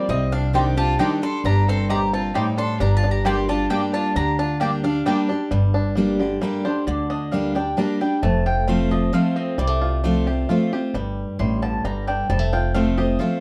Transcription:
Already playing: G3 G4
0.09 C2 C3 C4 D#5
0.32 D4 F5
0.53 D#3 G3 C4 D4 D#4 G4 D5 G5 C6
0.77 D4 F4 G4 A5
0.99 D#3 G3 D4 D#4 G4 D5 G5 C6
1.22 G3 D4 G4 A4 C6
1.44 G1 G2 D4 G4 A#5
1.68 C4 A4 C6
1.89 A#2 D#4 G4 D5 A#5 C6
2.13 C4 F4 A5
2.34 A2 G3 D#4 G4 D5 G5 C6
2.57 D4 A4 C6
2.79 G1 G2 D4 G4 A#5
2.96 F4 A5
3.04 D4
3.09 G4 A#5
3.25 G3 A#3 D4 G4 D5 G5 C6
3.48 D4 F4 G4 A5
3.70 G3 A#3 D4 G4 D5 G5
3.93 D4 F4 A5
4.16 D2 D3 D4 G4 A#5
4.39 D4 F4 A5
4.60 G3 A#3 D4 G4 D5 G5
4.84 D4 G4 F5
5.05 G3 A#3 D4 G4 D5 G5
5.29 D4 G4
5.51 G1 G2 G3
5.74 D4
5.95 G3 A#3 D4 G4
6.19 D3 D4 G4
6.41 G3 A#3 D4 G4 A#4
6.65 D4 G4 C5
6.87 D2 D3 D5
7.10 D4 D#5
7.32 G3 A#3 D4 G4 F5
7.55 D4 G4 G5
7.77 G3 A#3 D4 G4 A#5
8.01 G3 D4 G4 G5
8.23 F1 F2 A3 A5
8.46 F4 G5
8.68 F3 A3 C4 F4 F5
8.91 F3 C4 F4 D#5
9.13 F3 A3 C4 F4 F5
9.36 C4 D#5
9.58 C2 C3 G3 D5
9.67 A3
9.82 F4
10.04 F3 A3 C4 F4
10.27 C4 F4 G4
10.49 F3 A3 C4 F4
10.73 C4 F4 G4
10.94 G1 G2 G3
11.39 A1 A2 G3 C6
11.62 D3 A5
11.84 G1 G2 G3 A#5
12.07 D4 G5
12.29 F1 F2 G3 A5
12.39 A3
12.53 F4 G5
12.74 F3 A3 C4 F4 F5
12.97 C4 F4 G4 D#5
13.19 F3 A3 C4 F4 F5

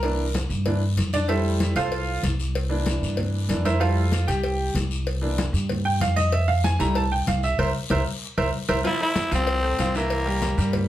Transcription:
Already playing: C2 A#4
0.03 E3 A#3 D4, cowbell, high conga, long guiro
0.19 high conga
0.34 cowbell, high conga, short guiro
0.49 G2, short guiro
0.66 E3 A#3 D4, cowbell, high conga, low conga, long guiro
0.82 high conga
0.97 F2, cowbell, high conga, short guiro
1.13 D4 D5, cowbell, high conga, short guiro
1.28 G3 A3 E4 A4 C5 E5, cowbell, long guiro
1.45 high conga
1.60 cowbell, high conga, short guiro
1.75 C2 F4 A4 C5 F5, cowbell, short guiro
1.92 cowbell, high conga, long guiro
2.08 high conga
2.23 C2, cowbell, high conga, short guiro
2.39 high conga, short guiro
2.55 cowbell, high conga, long guiro
2.69 E3 A#3 D4, high conga
2.86 cowbell, high conga, short guiro
3.01 G2, high conga, short guiro
3.17 cowbell, high conga, low conga, long guiro
3.34 high conga
3.49 F2 E3 A#3 D4, cowbell, high conga, short guiro
3.65 E4 A#4 C5 E5, cowbell, high conga, short guiro
3.80 G3 A3 E4 F4 A4 C5 F5, cowbell, high conga, long guiro
4.12 cowbell, high conga, short guiro
4.27 C2 G4 G5, cowbell, high conga, short guiro
4.43 cowbell, high conga, long guiro
4.60 high conga
4.74 C2, cowbell, high conga, short guiro
4.91 high conga, short guiro
5.07 cowbell, high conga, long guiro
5.22 E3 A#3 D4, high conga
5.38 cowbell, high conga, short guiro
5.53 G2, high conga, short guiro
5.69 cowbell, high conga, low conga, long guiro
5.85 G5, high conga
6.00 F2 F5, cowbell, high conga, short guiro
6.16 D#5, cowbell, high conga, short guiro
6.32 E5, cowbell, long guiro
6.48 F5, high conga
6.64 G#5, cowbell, high conga, short guiro
6.79 C2 G3 A3 E4 A#5, cowbell, short guiro
6.95 A5, cowbell, high conga, long guiro
7.12 G5, high conga
7.27 C2 F5, cowbell, high conga, short guiro
7.43 E5, high conga, short guiro
7.58 C2 A#4 C5 E5, cowbell, high conga, long guiro
7.90 C2 A#4 C5 E5, cowbell, high conga, long guiro
8.37 C2 A#4 C5 E5, cowbell, high conga, long guiro
8.69 C2 A#4 C5 E5, cowbell, high conga, long guiro
8.84 F3 E4 F4 F5, cowbell, high conga, long guiro
9.00 A3 E4 A4 C5, high conga
9.15 cowbell, high conga, short guiro
9.31 C2 F3 C4 F4 F5, cowbell, high conga, short guiro
9.47 cowbell, high conga, long guiro
9.63 A3 A4 C5, high conga
9.78 C2 F3 F4 F5, cowbell, high conga, short guiro
9.95 E3 A#3 E4 E5, high conga, short guiro
10.10 cowbell, high conga, long guiro
10.26 G3 G4 A#4, high conga
10.42 cowbell, high conga, short guiro
10.57 G2 G3 G4 A#4, short guiro
10.73 cowbell, high conga, low conga, long guiro

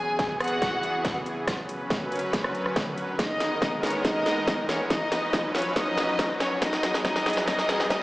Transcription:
Already playing: E2 E3 B3 G#4 G#5, riser
0.19 kick, snare, closed hi-hat
0.40 F#4 F#5, cross-stick, closed hi-hat
0.44 closed hi-hat
0.48 closed hi-hat
0.62 kick, snare, closed hi-hat
0.83 closed hi-hat
1.05 kick, snare, closed hi-hat
1.26 closed hi-hat
1.47 F#2 F#3 C#4 B4, kick, cross-stick, snare, closed hi-hat
1.69 closed hi-hat
1.90 kick, snare, closed hi-hat
2.12 closed hi-hat
2.16 closed hi-hat
2.19 closed hi-hat
2.33 kick, snare, closed hi-hat
2.44 cross-stick
2.55 closed hi-hat
2.66 cross-stick
2.76 kick, snare, closed hi-hat
2.98 closed hi-hat
3.19 G#2 G#3 B3 D#4 A#4 D#5, kick, snare, closed hi-hat
3.40 snare, closed hi-hat
3.62 kick, snare, closed hi-hat
3.83 C#4 C#5, snare, closed hi-hat
3.87 closed hi-hat
3.90 closed hi-hat
4.05 D#4 D#5, kick, snare, closed hi-hat
4.26 snare, closed hi-hat
4.47 kick, snare, closed hi-hat
4.69 C#4 C#5, snare, closed hi-hat
4.90 F#2 F#3 C#4 D#4 B4 D#5, kick, snare, closed hi-hat
5.12 snare, closed hi-hat
5.33 kick, snare, closed hi-hat
5.55 C#4 C#5, snare, closed hi-hat
5.58 closed hi-hat
5.62 closed hi-hat
5.76 D#4 D#5, kick, snare, closed hi-hat
5.98 snare, closed hi-hat
6.19 kick, snare, closed hi-hat
6.40 C#4 C#5, snare, closed hi-hat
6.62 E2 E3 B3 D#4 G#4 D#5, kick, snare, closed hi-hat
6.73 snare
6.83 snare, closed hi-hat
6.94 snare
7.05 D#4 D#5, kick, snare, closed hi-hat
7.16 snare
7.26 snare, closed hi-hat
7.30 closed hi-hat
7.33 snare, closed hi-hat
7.47 D#4 D#5, kick, snare, closed hi-hat
7.59 snare
7.69 snare, closed hi-hat
7.80 snare
7.90 D#4 D#5, kick, snare, closed hi-hat

